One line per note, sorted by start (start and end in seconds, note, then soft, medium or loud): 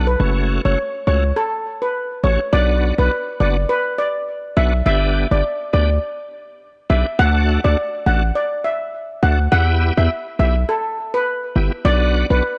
0.00 0.16 B1 medium
0.07 0.18 B4 medium
0.20 0.59 F#1 loud
0.20 0.61 A3 loud
0.20 0.61 C#4 medium
0.20 0.62 F#4 loud
0.65 0.76 F#1 loud
0.65 0.78 A3 medium
0.65 0.78 C#4 medium
0.65 0.79 F#4 medium
0.65 0.76 C#5 medium
1.07 1.33 C#2 medium
1.07 1.24 A3 medium
1.07 1.24 C#4 medium
1.07 1.24 F#4 medium
1.07 1.21 C#5 medium
1.36 1.50 A4 medium
1.82 1.93 B4 medium
2.23 2.38 A1 medium
2.23 2.40 A3 medium
2.23 2.40 C#4 medium
2.23 2.40 F#4 medium
2.23 2.37 C#5 medium
2.53 2.92 B1 loud
2.53 2.94 B3 loud
2.53 2.94 D4 medium
2.53 2.95 F#4 loud
2.53 2.66 D5 loud
2.98 3.10 B1 medium
2.98 3.11 B3 medium
2.98 3.11 D4 medium
2.98 3.12 F#4 medium
2.98 3.23 B4 medium
3.40 3.66 F#1 medium
3.40 3.57 B3 medium
3.40 3.57 D4 medium
3.40 3.57 F#4 medium
3.40 3.65 D5 medium
3.69 3.83 B4 medium
3.98 4.12 D5 medium
4.57 4.82 B1 medium
4.57 4.73 B3 medium
4.57 4.73 D4 medium
4.57 4.73 F#4 medium
4.57 4.70 E5 medium
4.86 5.25 G1 loud
4.86 5.27 B3 loud
4.86 5.27 D4 medium
4.86 5.28 G4 loud
4.86 5.00 E5 loud
5.31 5.42 G1 loud
5.31 5.44 B3 medium
5.31 5.44 D4 medium
5.31 5.44 G4 medium
5.31 5.56 D5 medium
5.73 5.99 D2 medium
5.73 5.90 B3 medium
5.73 5.90 D4 medium
5.73 5.90 G4 medium
5.73 5.98 D5 medium
6.90 7.04 B1 medium
6.90 7.06 B3 medium
6.90 7.06 D4 medium
6.90 7.06 G4 medium
6.90 7.03 E5 medium
7.19 7.58 D2 loud
7.19 7.60 A3 loud
7.19 7.61 D4 medium
7.19 7.61 F#4 loud
7.19 7.33 F#5 loud
7.64 7.76 D2 loud
7.64 7.77 A3 medium
7.64 7.77 D4 medium
7.64 7.78 F#4 medium
7.64 7.89 D5 medium
8.06 8.32 A1 loud
8.06 8.23 A3 medium
8.06 8.23 D4 medium
8.06 8.23 F#4 medium
8.06 8.31 F#5 medium
8.35 8.49 D5 medium
8.64 8.78 E5 medium
9.23 9.48 D2 medium
9.23 9.39 A3 medium
9.23 9.39 D4 medium
9.23 9.39 F#4 medium
9.23 9.36 F#5 medium
9.52 9.91 E2 loud
9.52 9.93 B3 medium
9.52 9.93 E4 medium
9.52 9.94 G4 loud
9.52 9.66 F#5 loud
9.97 10.09 E2 loud
9.97 10.10 B3 medium
9.97 10.10 E4 medium
9.97 10.10 G4 medium
9.97 10.22 E5 medium
10.39 10.65 B1 loud
10.39 10.56 B3 medium
10.39 10.56 E4 medium
10.39 10.56 G4 medium
10.39 10.64 E5 medium
10.69 10.82 A4 medium
11.14 11.25 B4 medium
11.55 11.70 G1 medium
11.55 11.72 B3 medium
11.55 11.72 E4 medium
11.55 11.72 G4 medium
11.85 12.24 B1 loud
11.85 12.26 B3 medium
11.85 12.26 D4 medium
11.85 12.27 F#4 loud
11.85 11.99 D5 loud
12.30 12.41 B1 medium
12.30 12.43 B3 medium
12.30 12.43 D4 medium
12.30 12.44 F#4 medium
12.30 12.55 B4 medium